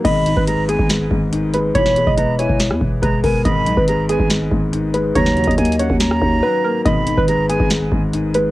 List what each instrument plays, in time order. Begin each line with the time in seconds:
0.04 808-style bass G#1, felt piano G#2, analog polysynth G#2 B2 D#3, synth pluck D#5, flute B5, kick, closed hi-hat, crash
0.26 felt piano D#3, closed hi-hat
0.37 808-style bass G#1, synth pluck B4, kick
0.47 felt piano G#3, flute A#5, closed hi-hat
0.68 felt piano B3, synth pluck G#4, flute G#5, closed hi-hat
0.79 808-style bass G#1, kick
0.89 snare, closed hi-hat
1.11 808-style bass G#1, felt piano G#2, kick
1.33 felt piano D#3, closed hi-hat
1.54 felt piano G#3, synth pluck B4, closed hi-hat
1.75 808-style bass E1, analog polysynth G#2 B2 E3, felt piano E3, synth pluck C#5, flute B5, kick, closed hi-hat
1.86 snare
1.96 felt piano G#3, closed hi-hat
2.07 808-style bass E1, synth pluck D#5, kick
2.17 808-style bass E1, felt piano B3, flute A#5, closed hi-hat
2.39 felt piano E4, synth pluck C#5, flute G#5, closed hi-hat
2.49 808-style bass E1, kick
2.60 snare, closed hi-hat
2.71 808-style bass E2, cross-stick
2.81 808-style bass E1, felt piano E3, kick
3.02 808-style bass E1, felt piano G#3, synth pluck B4, flute A#5, kick, closed hi-hat
3.24 808-style bass E1, felt piano B3, synth pluck A#4, flute G#5, kick, open hi-hat
3.45 808-style bass G#1, analog polysynth G#2 B2 D#3, felt piano G#2, synth pluck D#5, flute B5, kick, closed hi-hat
3.66 808-style bass B1, felt piano D#3, closed hi-hat
3.77 808-style bass G#1, synth pluck B4, kick
3.88 felt piano G#3, flute A#5, closed hi-hat
4.09 felt piano B3, synth pluck G#4, flute G#5, closed hi-hat
4.20 808-style bass G#1, kick
4.30 snare, closed hi-hat
4.51 808-style bass G#1, felt piano G#2, kick
4.73 felt piano D#3, closed hi-hat
4.94 felt piano G#3, synth pluck B4, closed hi-hat
5.15 808-style bass D#2, analog polysynth C#3 D#3 F#3, felt piano D#3, synth pluck C#5, flute A#5, kick, closed hi-hat
5.26 snare
5.37 felt piano F#3, closed hi-hat
5.44 808-style bass D#2, synth pluck D#5, kick, closed hi-hat
5.51 closed hi-hat
5.58 808-style bass D#2, felt piano A#3, flute G#5, closed hi-hat
5.65 closed hi-hat
5.72 closed hi-hat
5.79 felt piano C#4, synth pluck C#5, flute F#5, closed hi-hat
5.90 808-style bass D#2, kick
6.00 flute A#5, snare, closed hi-hat
6.11 cross-stick
6.21 808-style bass D#2, felt piano D#3, kick
6.43 felt piano F#3, synth pluck B4
6.64 felt piano A#3, synth pluck A#4
6.85 808-style bass G#1, felt piano G#2, analog polysynth G#2 B2 D#3, synth pluck D#5, flute B5, kick, closed hi-hat
7.07 felt piano D#3, closed hi-hat
7.17 808-style bass G#1, synth pluck B4, kick
7.28 felt piano G#3, flute A#5, closed hi-hat
7.49 felt piano B3, synth pluck G#4, flute G#5, closed hi-hat
7.60 808-style bass G#1, kick
7.70 snare, closed hi-hat
7.92 808-style bass G#1, felt piano G#2, kick
8.13 felt piano D#3, closed hi-hat
8.34 felt piano G#3, synth pluck B4, closed hi-hat